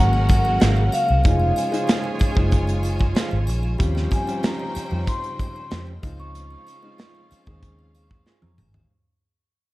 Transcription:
Already playing: G#1 C#3 F#3 G#3 A#3 C#4 F#4 A#4 F#5
0.13 muted triangle
0.29 kick, closed hi-hat, triangle
0.45 muted triangle
0.60 G#1 G#4 A#4 F5, snare, closed hi-hat, muted triangle
0.77 muted triangle
0.92 F5, closed hi-hat, triangle
1.09 C2, muted triangle
1.24 F1 F3 G#3 C#4 D#4 F4 G#4 C5 C#5 G#5, kick, closed hi-hat, muted triangle
1.40 muted triangle
1.56 closed hi-hat, triangle
1.72 G#3 D#4 F4 C5, closed hi-hat, muted triangle
1.87 G#4 C5 F5, snare, closed hi-hat, muted triangle
2.04 muted triangle
2.19 muted fingered electric bass stroke, kick, closed hi-hat, triangle
2.35 F#1 G#3 D#4 F4 C5, kick, muted triangle
2.52 kick, closed hi-hat, muted triangle
2.67 closed hi-hat, muted triangle
2.83 closed hi-hat, triangle
2.99 kick, muted triangle
3.15 G#4 C5 F5, snare, closed hi-hat, muted triangle
3.31 G#1, muted triangle
3.47 A#1, closed hi-hat, triangle
3.63 muted triangle
3.78 D#2 C#3 G3 C4 C#4 D#4 F4 C5 G5, kick, closed hi-hat, muted triangle
3.95 snare, muted triangle
4.11 G#5, kick, closed hi-hat, triangle
4.26 G3 C4 C#4 F4, closed hi-hat, muted triangle
4.43 C#4 G4 C5 A#5, snare, closed hi-hat, muted triangle
4.59 muted triangle
4.75 muted fingered electric bass stroke, closed hi-hat, triangle
4.91 F2 G3 C4 C#4 F4, muted triangle
5.07 C6, kick, closed hi-hat, muted triangle
5.24 closed hi-hat, muted triangle
5.39 kick, closed hi-hat, triangle
5.56 muted triangle
5.70 F2 C#4 G4 C5, snare, closed hi-hat, muted triangle
5.87 muted triangle
6.02 C#2 C#3 G#3 C4 C#4 D#4 F4 F5, kick, closed hi-hat, triangle
6.20 C#6, muted triangle
6.35 closed hi-hat, muted triangle
6.50 muted triangle
6.67 closed hi-hat, triangle
6.82 G#3 C4 D#4 F4, muted triangle
6.98 F4 G#4 C5, snare, closed hi-hat, muted triangle
7.15 muted triangle
7.31 muted fingered electric bass stroke, closed hi-hat, triangle
7.46 D#2 G#3 C4 D#4 G#4, kick, muted triangle
7.63 kick, closed hi-hat, muted triangle
7.79 muted triangle
7.95 F5, closed hi-hat, triangle
8.11 kick, muted triangle
8.26 F4 G#4 C5 G#5, snare, muted triangle
8.42 F2 A#5, high tom, muted triangle
8.58 G#1, mid tom, triangle
8.74 floor tom, muted triangle

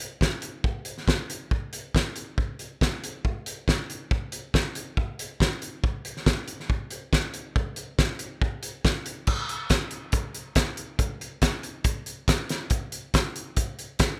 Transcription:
0.21 kick, snare
0.42 closed hi-hat
0.64 kick
0.85 closed hi-hat
0.98 snare
1.08 kick, snare
1.30 closed hi-hat
1.51 kick
1.73 closed hi-hat
1.95 kick, snare
2.16 closed hi-hat
2.38 kick
2.59 closed hi-hat
2.81 kick, snare
3.04 closed hi-hat
3.25 kick
3.46 closed hi-hat
3.68 kick, snare
3.90 closed hi-hat
4.11 kick
4.32 closed hi-hat
4.54 kick, snare
4.75 closed hi-hat
4.97 kick
5.19 closed hi-hat
5.40 kick, snare
5.62 closed hi-hat
5.84 kick
6.05 closed hi-hat
6.17 snare
6.26 kick, snare
6.48 closed hi-hat
6.60 snare
6.70 kick
6.91 closed hi-hat
7.13 kick, snare
7.34 closed hi-hat
7.56 kick
7.76 closed hi-hat
7.99 kick, snare
8.19 closed hi-hat
8.42 kick
8.63 closed hi-hat
8.85 kick, snare
9.06 closed hi-hat
9.27 kick, crash
9.49 closed hi-hat
9.70 kick, snare, closed hi-hat
9.91 closed hi-hat
10.12 kick, closed hi-hat
10.34 closed hi-hat
10.55 kick, snare, closed hi-hat
10.77 closed hi-hat
10.99 kick, closed hi-hat
11.21 closed hi-hat
11.42 kick, snare, closed hi-hat
11.63 closed hi-hat
11.84 kick, closed hi-hat
12.06 closed hi-hat
12.28 kick, snare, closed hi-hat
12.49 snare, closed hi-hat
12.70 kick, closed hi-hat
12.92 closed hi-hat
13.14 kick, snare, closed hi-hat
13.36 closed hi-hat
13.57 kick, closed hi-hat
13.79 closed hi-hat
13.99 kick, snare, closed hi-hat

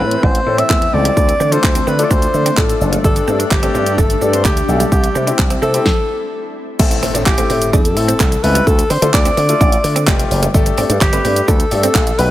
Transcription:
Already playing: E3 A3 C4 E4 A4 B4
0.00 A2
0.11 closed hi-hat
0.23 A1 D4 C5, kick
0.35 closed hi-hat
0.46 A2 C4 E4 A4, muted clean electric guitar stroke
0.58 C4 E5, closed hi-hat
0.70 E2 A3, kick, clap
0.82 muted clean electric guitar stroke, closed hi-hat
0.93 C#2 C4 E4 A4 D5
1.05 G3, closed hi-hat
1.16 D2 F3 D4, kick, shaker
1.29 muted clean electric guitar stroke, closed hi-hat, shaker
1.40 D3 C4, shaker
1.52 D4 F4 A4 C5, closed hi-hat, shaker
1.64 D2, muted clean electric guitar stroke, kick, clap, shaker
1.75 C4, closed hi-hat, shaker
1.87 D3 C4 B4, shaker
1.99 D4 F4 A4, closed hi-hat, shaker
2.04 D5
2.11 D2 D4 C5, kick, shaker
2.22 closed hi-hat, shaker
2.34 D3, muted clean electric guitar stroke, shaker
2.46 C4, closed hi-hat, shaker
2.57 A2 A3 D4 F4 A4, kick, clap, shaker
2.69 muted clean electric guitar stroke, closed hi-hat, shaker
2.81 F#1, shaker
2.93 G3, closed hi-hat, shaker
3.04 G1 G3 D4 G4 A4, kick, shaker
3.16 muted clean electric guitar stroke, closed hi-hat, shaker
3.28 G2 C4, shaker
3.39 D4, closed hi-hat, shaker
3.51 G1 G4, muted clean electric guitar stroke, kick, clap, shaker
3.63 C4 D4 G4 A4, closed hi-hat, shaker
3.75 G2 C4, shaker
3.86 closed hi-hat, shaker
3.98 G1 D4 A4, kick, shaker
4.10 closed hi-hat, shaker
4.21 G2 D4 G4 A4, muted clean electric guitar stroke, shaker
4.33 C4 C5, closed hi-hat, shaker
4.45 D2 A3 G4, kick, clap, shaker
4.57 muted clean electric guitar stroke, closed hi-hat, shaker
4.68 B1 D4 G4 A4, shaker
4.80 G3, closed hi-hat, shaker
4.92 C2 G4, kick, shaker
5.04 muted clean electric guitar stroke, closed hi-hat, shaker
5.15 C3 C4, shaker
5.27 C4 D4 E4 G4, closed hi-hat, shaker
5.39 C2, muted clean electric guitar stroke, kick, clap, shaker
5.50 C4, closed hi-hat, shaker
5.62 C3 C4 A4, shaker
5.74 C4 E4 G4, closed hi-hat, shaker
5.86 kick, snare
6.79 A1 A3 C4 E4 A4, kick, crash, impact, shaker
6.91 muted clean electric guitar stroke, closed hi-hat, shaker
7.03 A2 C4, open hi-hat, shaker
7.14 A2 D4, closed hi-hat, shaker
7.26 A1 G4, muted clean electric guitar stroke, kick, clap, shaker
7.38 A3 C4 E4 A4, closed hi-hat, shaker
7.50 A2 C4, open hi-hat, shaker
7.62 closed hi-hat, shaker
7.73 E2 D4 A4, kick, shaker
7.85 closed hi-hat, shaker
7.96 A2 A3 C4 E4 A4, muted clean electric guitar stroke, open hi-hat, shaker
8.08 C4, closed hi-hat, shaker
8.20 C2 A3, kick, clap, shaker
8.32 muted clean electric guitar stroke, closed hi-hat, shaker
8.43 C#2 A3 C4 E4 A4 B4, open hi-hat, shaker
8.55 G3, closed hi-hat, shaker
8.67 D2 A4, kick, shaker
8.79 muted clean electric guitar stroke, closed hi-hat, shaker
8.90 D3 C4 C5, open hi-hat, shaker
9.02 D3 A3 D4 F4 A4, closed hi-hat, shaker
9.13 D2 D5, muted clean electric guitar stroke, kick, clap, shaker
9.25 C4, closed hi-hat, shaker
9.37 D3 C4, open hi-hat, shaker
9.49 A3 D4 F4 A4, closed hi-hat, shaker
9.61 A1 D4, kick, shaker
9.72 closed hi-hat, shaker
9.84 D3, muted clean electric guitar stroke, open hi-hat, shaker
9.96 C4, closed hi-hat, shaker
10.07 F1 A3 D4 F4 G4, kick, clap, shaker
10.19 muted clean electric guitar stroke, closed hi-hat, shaker
10.31 F#1, open hi-hat, shaker
10.43 G3, closed hi-hat, shaker
10.54 G1 A3 D4 G4 A4, kick, shaker
10.66 muted clean electric guitar stroke, closed hi-hat, shaker
10.78 G2 C4, open hi-hat, shaker
10.89 G2 D4, closed hi-hat, shaker
11.01 G1 G4, muted clean electric guitar stroke, kick, clap, shaker
11.13 A3 C4 D4 G4 B4, closed hi-hat, shaker
11.25 G2 C4, open hi-hat, shaker
11.36 closed hi-hat, shaker
11.48 D2 D4 A4, kick, shaker
11.60 closed hi-hat, shaker
11.71 G2 A3 D4 G4 A4, muted clean electric guitar stroke, open hi-hat, shaker
11.83 C4, closed hi-hat, shaker
11.95 A#1 A3, kick, clap, shaker
12.07 muted clean electric guitar stroke, closed hi-hat, shaker
12.18 B1 A3 D4 G4 B4, open hi-hat, shaker

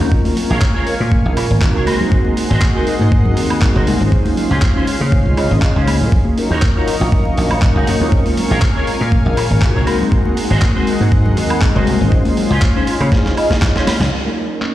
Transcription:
Already playing: D#4 F#4 A#4 C#5 D#5 C#6
0.00 D#2 G#3 C4 C#4 F4 A#4
0.12 F5 G#5 C#6, kick
0.25 open hi-hat, high conga
0.36 G#3 C4 C#4 F4 A#4, open hi-hat, low conga
0.49 A#1 G#4 A#4 C#5
0.62 kick, clap, high conga
0.74 G#3 C4 C#4 F4 G#4 A#4 C#5
0.87 muted slap bass stroke, open hi-hat
1.00 A#2, high conga
1.11 G#3 C#4 F4 A#4, muted clean electric guitar stroke, kick
1.26 A#1
1.36 A#2, muted clean electric guitar stroke, open hi-hat, high woodblock
1.49 G#1, muted clean electric guitar stroke, high conga
1.62 A#2 G#3 C4 D#4 F#4 A#4, kick, clap
1.74 C#2 G#4 A#4 C#5
1.86 F#4 G#4 C5 D#5 F#5 C6, open hi-hat, high conga, high woodblock
2.00 G#3 C4 D#4 F#4 A#4, low conga
2.12 kick
2.25 high conga
2.37 G#3 C4 D#4 F#4 A#4, open hi-hat
2.49 G#1 F#4 G#4 C5
2.62 kick, clap, high conga
2.74 G#3 C4 D#4 F#4 G#4 A#4 C5
2.87 muted slap bass stroke, open hi-hat
2.99 G#2, high conga
3.11 G#3 C4 D#4 F#4 A#4, muted clean electric guitar stroke, kick
3.25 low conga
3.36 D#2, muted clean electric guitar stroke, open hi-hat
3.49 muted clean electric guitar stroke, high conga, high woodblock
3.62 G#3 C4 D#4 F#4 A#4, kick, clap
3.74 F#1 F#4 G#4 C5
3.87 C2, open hi-hat, high conga
4.00 G#1 G#3 C#4 D#4 F4 C5
4.12 C#4 F5 C6, kick
4.26 open hi-hat, high conga
4.36 G#3 C#4 D#4 F4 C5, open hi-hat, low conga
4.49 C#2 C#4 F4 C5
4.62 kick, clap, high conga
4.75 G#3 C#4 D#4 F4 C5
4.87 muted slap bass stroke, open hi-hat
5.00 C#3, high conga
5.11 G#3 C#4 D#4 F4 C5, muted clean electric guitar stroke, kick
5.25 C#2
5.36 C#3 G#3 C#4 D#4 F4 D#5, muted clean electric guitar stroke, open hi-hat, high woodblock
5.50 G#1, muted clean electric guitar stroke, high conga
5.62 kick, clap
5.74 C#2 G#3 C#4 D#4 F4 C5 C#5
5.87 open hi-hat, high conga, high woodblock
6.01 A#2, low conga
6.12 A#4 D#5 C#6, kick
6.25 high conga
6.37 F#3 C#4 D#4 F4 A#4, open hi-hat
6.50 D#2 D#4 F#4 C#5
6.62 kick, clap, high conga
6.75 F#3 C#4 D#4 F4 F#4 A#4 C#5
6.87 muted slap bass stroke, open hi-hat
7.00 A#1, high conga
7.12 F#3 C#4 D#4 A#4 F5, muted clean electric guitar stroke, kick
7.25 low conga
7.37 A#1, muted clean electric guitar stroke, open hi-hat
7.50 muted clean electric guitar stroke, high conga, high woodblock
7.62 F#3 C#4 D#4 A#4 F5, kick, clap
7.75 C#2 D#4 F#4 G#4
7.87 F#2, open hi-hat, high conga
8.00 D#2 G#3 C4 C#4 F4 A#4
8.12 A#4 F5 G#5, kick
8.26 open hi-hat, high conga
8.37 G#3 C4 C#4 F4 A#4, open hi-hat, low conga
8.49 A#1 G#4 A#4 C#5
8.62 kick, clap, high conga
8.75 G#3 C4 C#4 F4 G#4 A#4 C#5
8.87 muted slap bass stroke, open hi-hat
9.01 A#2, high conga
9.11 G#3 C#4 F4 A#4, muted clean electric guitar stroke, kick
9.26 A#1
9.36 A#2, muted clean electric guitar stroke, open hi-hat, high woodblock
9.49 G#1, muted clean electric guitar stroke, high conga
9.62 A#2 G#3 C4 D#4 F#4 A#4, kick, clap
9.74 C#2 G#4 A#4 C#5
9.86 F#4 G#4 C5 D#5 F#5 C6, open hi-hat, high conga, high woodblock
10.00 G#3 C4 D#4 F#4 A#4, low conga
10.12 kick
10.25 high conga
10.36 G#3 C4 D#4 F#4 A#4, open hi-hat
10.49 G#1 F#4 G#4 C5
10.62 kick, clap, high conga
10.74 G#3 C4 D#4 F#4 G#4 A#4 C5
10.87 muted slap bass stroke, open hi-hat
11.00 G#2, high conga
11.11 G#3 C4 D#4 F#4 A#4, muted clean electric guitar stroke, kick
11.26 low conga
11.36 D#2, muted clean electric guitar stroke, open hi-hat
11.49 muted clean electric guitar stroke, high conga, high woodblock
11.61 G#3 C4 D#4 F#4 A#4, kick, clap
11.74 F#1 F#4 G#4 C5
11.87 C2, open hi-hat, high conga
12.00 G#1 G#3 C#4 D#4 F4 C5
12.12 C#4 F5, kick
12.25 open hi-hat, high conga
12.37 G#3 C#4 D#4 F4 C5, open hi-hat, low conga
12.49 C#2 C#4 F4 C5
12.62 kick, clap, high conga
12.74 G#3 C#4 D#4 F4 C5
12.87 muted slap bass stroke, open hi-hat
13.00 C#3, high conga, high woodblock
13.11 G#3 C#4 D#4 F4 C5, muted clean electric guitar stroke, kick, snare
13.26 snare
13.36 G#3 C#4 D#4 F4 D#5, muted clean electric guitar stroke, open hi-hat, high woodblock
13.50 muted clean electric guitar stroke, kick, snare, high conga
13.62 kick, snare, clap
13.74 G#3 C#4 D#4 F4 C5 C#5, snare
13.87 muted slap bass stroke, snare, open hi-hat, high conga, high woodblock
14.00 C#2, snare, low conga
14.11 F#3 C#4 D#4 F4 A#4 C#6
14.25 high conga
14.61 clap, high conga

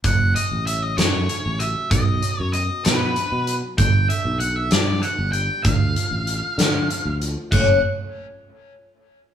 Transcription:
0.04 F#1 F#2 F#5, kick, closed hi-hat
0.35 C#3 D#5, closed hi-hat
0.52 A1
0.67 C#3 E5, closed hi-hat
0.82 D#5
0.97 F#2 A3 C#5, snare, closed hi-hat
1.29 C#3, closed hi-hat
1.46 A1
1.59 F#3 E5, closed hi-hat
1.90 B1 B2 D#5, kick, closed hi-hat
2.22 F#3, closed hi-hat
2.40 F#2 C#5
2.53 B2 D#5, closed hi-hat
2.83 B2 B3 B4, snare, closed hi-hat
3.15 B2, closed hi-hat
3.32 B2
3.46 F#3, closed hi-hat
3.78 G1 G2 G5, kick, closed hi-hat
4.09 D3 E5, closed hi-hat
4.25 B1
4.40 D3 F#5, closed hi-hat
4.56 E5
4.71 G2 B3 D5, snare, closed hi-hat
5.02 D3 F#5, closed hi-hat
5.19 G1
5.32 G3 G5, closed hi-hat
5.64 D2 D3 F5, kick, closed hi-hat
5.96 F3, closed hi-hat
6.11 A1
6.27 D3, closed hi-hat
6.58 D3 A3, snare, closed hi-hat
6.90 D3, closed hi-hat
7.05 D2
7.22 F3, closed hi-hat
7.51 F#1 F#2 C#3 F#3 A3 C#4 F#5, kick, crash

